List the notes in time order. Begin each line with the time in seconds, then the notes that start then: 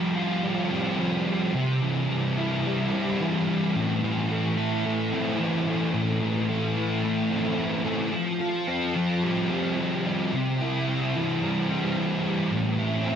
Already playing: F3 G3 C4
0.15 F4
0.44 G3
0.71 C4
0.99 F3
1.27 G3
1.54 C3
1.82 E3
2.09 G3
2.37 E4
2.66 G3
2.92 C4
3.20 E3
3.47 G3
3.75 A2
4.03 E3
4.31 A3
4.57 E4
4.85 A3
5.12 C4
5.39 E3
5.67 A3
5.93 A2
6.21 E3
6.49 A3
6.76 E4
7.04 A3
7.30 C4
7.58 E3
7.85 A3
8.12 F3
8.40 F4
8.68 C4
8.96 F3
9.23 G3
9.50 C4
9.78 F3
10.05 G3
10.33 C3
10.61 E4
10.88 C4
11.15 E3
11.42 G3
11.70 C4
11.96 E3
12.24 G3
12.51 A2
12.78 E4
13.05 C4